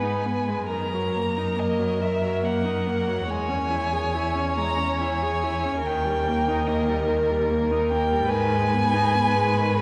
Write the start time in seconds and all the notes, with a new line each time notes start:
Already playing: G#2 B4 G#5
0.03 D#4
0.26 B3
0.49 G#3
0.69 F#2 D#3 A#4 A#5
0.94 F#3
1.16 A#3
1.37 D#4
1.57 A#3 D#5
1.79 F#3
2.00 D#3 E5
2.21 F#3
2.43 A#3 F#5
2.65 D#4
2.87 A#3
3.08 F#3
3.28 E2 G#3 C#5 G#5
3.48 C#4
3.70 E4
3.92 G#4
4.15 E4
4.35 C#4
4.57 G#3 A#5
4.78 C#4
5.01 E4 G#5
5.22 G#4
5.43 E4
5.65 C#4
5.83 D#2 D#3 A#4 G5
6.05 G3
6.28 A#3
6.48 D#4
6.67 A#3 D#5
6.88 G3
7.08 D#3
7.30 G3
7.50 A#3
7.71 D#4
7.90 A#3 G5
8.12 G3
8.30 G#2 D#3 B4 G#5
8.53 G#3
8.74 B3
8.94 D#4
9.15 B3
9.36 G#3
9.58 D#3